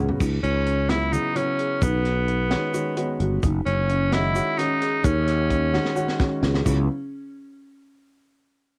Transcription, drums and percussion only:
0.09 floor tom medium
0.20 kick loud
0.20 crash medium
0.20 shaker medium
0.44 closed hi-hat medium
0.66 closed hi-hat medium
0.89 snare loud
0.89 closed hi-hat medium
1.13 closed hi-hat medium
1.13 shaker medium
1.36 closed hi-hat medium
1.36 shaker soft
1.59 closed hi-hat medium
1.82 kick loud
1.82 closed hi-hat medium
1.82 shaker medium
2.05 snare soft
2.05 closed hi-hat medium
2.28 closed hi-hat medium
2.51 snare loud
2.51 closed hi-hat medium
2.74 closed hi-hat medium
2.74 shaker medium
2.97 closed hi-hat medium
2.97 shaker soft
3.20 closed hi-hat medium
3.43 kick loud
3.43 closed hi-hat medium
3.43 shaker medium
3.66 closed hi-hat medium
3.89 closed hi-hat medium
4.12 snare loud
4.12 closed hi-hat medium
4.35 closed hi-hat medium
4.35 shaker medium
4.58 snare soft
4.58 closed hi-hat medium
4.58 shaker soft
4.81 snare soft
4.81 closed hi-hat medium
5.04 kick loud
5.04 closed hi-hat medium
5.04 shaker medium
5.28 snare soft
5.28 closed hi-hat medium
5.28 shaker soft
5.50 kick medium
5.50 closed hi-hat medium
5.50 shaker soft
5.74 snare medium
5.85 snare medium
5.96 shaker medium
6.08 snare medium
6.20 kick loud
6.20 snare medium
6.20 shaker soft
6.43 snare medium
6.43 shaker soft
6.54 snare medium
6.66 kick medium
6.66 crash medium
6.66 shaker medium

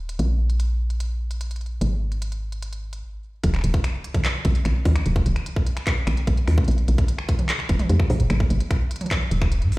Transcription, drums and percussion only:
0.09 closed hi-hat soft
0.19 closed hi-hat medium
0.50 closed hi-hat soft
0.60 closed hi-hat medium
0.90 closed hi-hat soft
1.00 closed hi-hat medium
1.31 closed hi-hat soft
1.41 closed hi-hat medium
1.51 closed hi-hat soft
1.56 closed hi-hat soft
1.61 closed hi-hat soft
1.66 closed hi-hat soft
1.81 closed hi-hat medium
2.12 closed hi-hat soft
2.22 closed hi-hat medium
2.32 closed hi-hat soft
2.52 closed hi-hat soft
2.62 closed hi-hat medium
2.73 closed hi-hat soft
2.93 closed hi-hat soft
3.44 kick loud
3.44 closed hi-hat medium
3.54 finger snap medium
3.54 closed hi-hat soft
3.56 finger snap soft
3.59 finger snap soft
3.61 finger snap soft
3.61 closed hi-hat medium
3.74 kick loud
3.74 closed hi-hat medium
3.84 finger snap medium
3.84 closed hi-hat medium
4.04 closed hi-hat medium
4.14 kick loud
4.14 closed hi-hat medium
4.14 mid tom medium
4.25 finger snap medium
4.25 clap loud
4.25 closed hi-hat medium
4.45 kick loud
4.45 closed hi-hat medium
4.55 closed hi-hat medium
4.65 finger snap medium
4.65 closed hi-hat medium
4.85 kick loud
4.85 mid tom medium
4.85 open hi-hat medium
4.96 finger snap medium
4.96 closed hi-hat medium
5.06 closed hi-hat medium
5.16 kick loud
5.16 closed hi-hat soft
5.26 closed hi-hat medium
5.36 finger snap soft
5.36 closed hi-hat medium
5.46 closed hi-hat medium
5.56 kick loud
5.67 closed hi-hat medium
5.77 finger snap medium
5.77 closed hi-hat medium
5.87 kick loud
5.87 clap loud
5.87 closed hi-hat medium
6.07 finger snap medium
6.07 closed hi-hat medium
6.17 closed hi-hat medium
6.27 kick loud
6.27 closed hi-hat medium
6.37 closed hi-hat soft
6.48 finger snap medium
6.48 open hi-hat medium
6.58 kick loud
6.58 closed hi-hat soft
6.64 closed hi-hat soft
6.68 closed hi-hat medium
6.71 closed hi-hat soft
6.78 closed hi-hat soft
6.88 closed hi-hat medium
6.98 kick loud
6.98 closed hi-hat medium
7.08 closed hi-hat medium
7.18 finger snap medium
7.29 kick loud
7.29 closed hi-hat medium
7.39 closed hi-hat medium
7.39 mid tom medium
7.49 clap loud
7.49 closed hi-hat medium
7.59 finger snap medium
7.69 kick loud
7.69 closed hi-hat medium
7.79 closed hi-hat medium
7.79 mid tom medium
7.89 closed hi-hat medium
8.00 finger snap medium
8.00 kick loud
8.10 mid tom medium
8.10 open hi-hat medium
8.20 closed hi-hat medium
8.30 finger snap medium
8.30 closed hi-hat medium
8.40 kick loud
8.40 closed hi-hat soft
8.50 closed hi-hat medium
8.60 closed hi-hat soft
8.71 finger snap soft
8.71 kick loud
8.71 closed hi-hat medium
8.91 closed hi-hat medium
8.96 closed hi-hat medium
9.01 closed hi-hat medium
9.01 mid tom medium
9.06 closed hi-hat soft
9.06 mid tom medium
9.11 finger snap soft
9.11 kick loud
9.11 clap loud
9.11 closed hi-hat medium
9.11 mid tom medium
9.16 mid tom soft
9.31 closed hi-hat medium
9.42 finger snap medium
9.42 kick loud
9.42 closed hi-hat medium
9.52 closed hi-hat medium
9.62 closed hi-hat soft
9.72 open hi-hat medium

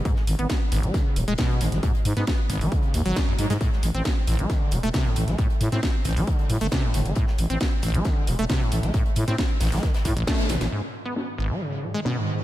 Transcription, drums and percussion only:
0.05 kick loud
0.05 closed hi-hat medium
0.16 snare medium
0.27 closed hi-hat medium
0.27 open hi-hat loud
0.39 closed hi-hat medium
0.49 kick loud
0.49 snare loud
0.49 closed hi-hat medium
0.72 closed hi-hat medium
0.72 open hi-hat loud
0.83 closed hi-hat medium
0.94 kick loud
0.94 snare soft
0.94 closed hi-hat medium
1.16 closed hi-hat medium
1.16 open hi-hat loud
1.28 closed hi-hat medium
1.38 kick loud
1.38 snare loud
1.38 closed hi-hat medium
1.50 snare soft
1.61 closed hi-hat medium
1.61 open hi-hat loud
1.72 snare soft
1.72 closed hi-hat medium
1.83 kick loud
1.83 closed hi-hat medium
1.95 closed hi-hat soft
2.05 closed hi-hat medium
2.05 open hi-hat loud
2.17 snare soft
2.17 closed hi-hat medium
2.27 kick loud
2.27 snare loud
2.27 closed hi-hat medium
2.50 closed hi-hat medium
2.50 open hi-hat loud
2.61 open hi-hat medium
2.72 kick loud
2.72 closed hi-hat medium
2.83 closed hi-hat soft
2.94 open hi-hat loud
2.94 open hi-hat medium
3.06 closed hi-hat medium
3.16 kick loud
3.16 snare loud
3.16 closed hi-hat medium
3.38 closed hi-hat medium
3.38 open hi-hat loud
3.50 snare loud
3.50 closed hi-hat medium
3.61 kick loud
3.61 closed hi-hat medium
3.73 snare soft
3.83 closed hi-hat medium
3.83 open hi-hat loud
3.95 closed hi-hat medium
4.04 kick loud
4.04 snare loud
4.04 closed hi-hat medium
4.27 closed hi-hat medium
4.27 open hi-hat loud
4.39 closed hi-hat medium
4.50 kick loud
4.50 snare soft
4.50 closed hi-hat medium
4.71 closed hi-hat medium
4.71 open hi-hat loud
4.83 closed hi-hat medium
4.93 kick loud
4.93 snare loud
4.93 closed hi-hat medium
5.05 snare soft
5.16 closed hi-hat medium
5.16 open hi-hat loud
5.28 snare soft
5.28 closed hi-hat medium
5.38 kick loud
5.38 closed hi-hat medium
5.50 closed hi-hat soft
5.61 closed hi-hat medium
5.61 open hi-hat loud
5.72 snare soft
5.72 closed hi-hat medium
5.83 kick loud
5.83 snare loud
5.83 closed hi-hat medium
6.04 closed hi-hat medium
6.04 open hi-hat loud
6.17 open hi-hat medium
6.27 kick loud
6.27 closed hi-hat medium
6.39 closed hi-hat soft
6.49 open hi-hat medium
6.49 open hi-hat loud
6.61 closed hi-hat medium
6.72 kick loud
6.72 snare loud
6.72 closed hi-hat medium
6.94 closed hi-hat medium
6.94 open hi-hat loud
7.06 closed hi-hat medium
7.06 closed hi-hat soft
7.16 kick loud
7.16 closed hi-hat medium
7.27 snare medium
7.38 closed hi-hat medium
7.38 open hi-hat loud
7.50 closed hi-hat medium
7.61 kick loud
7.61 snare loud
7.61 closed hi-hat medium
7.82 closed hi-hat medium
7.82 open hi-hat loud
7.94 closed hi-hat medium
8.05 kick loud
8.05 snare soft
8.05 closed hi-hat medium
8.27 closed hi-hat medium
8.27 open hi-hat loud
8.39 closed hi-hat medium
8.49 kick loud
8.49 snare loud
8.49 closed hi-hat medium
8.61 snare soft
8.72 closed hi-hat medium
8.72 open hi-hat loud
8.83 snare soft
8.83 closed hi-hat medium
8.94 kick loud
8.94 closed hi-hat medium
9.06 closed hi-hat soft
9.16 closed hi-hat medium
9.16 open hi-hat loud
9.28 snare soft
9.28 closed hi-hat medium
9.38 kick loud
9.38 snare loud
9.38 closed hi-hat medium
9.60 snare medium
9.60 closed hi-hat medium
9.60 open hi-hat loud
9.66 snare medium
9.66 closed hi-hat medium
9.72 snare loud
9.72 closed hi-hat medium
9.72 open hi-hat medium
9.77 snare loud
9.77 closed hi-hat medium
9.83 kick loud
9.83 snare loud
9.83 closed hi-hat medium
9.94 snare loud
9.94 closed hi-hat medium
10.05 kick medium
10.05 closed hi-hat medium
10.05 open hi-hat loud
10.17 closed hi-hat medium
10.27 kick loud
10.27 snare loud
10.27 closed hi-hat medium
10.38 snare loud
10.38 closed hi-hat medium
10.49 snare loud
10.49 snare medium
10.49 closed hi-hat medium
10.49 open hi-hat loud
10.61 snare medium
10.61 snare loud
10.61 closed hi-hat medium
11.16 snare loud
12.05 snare loud

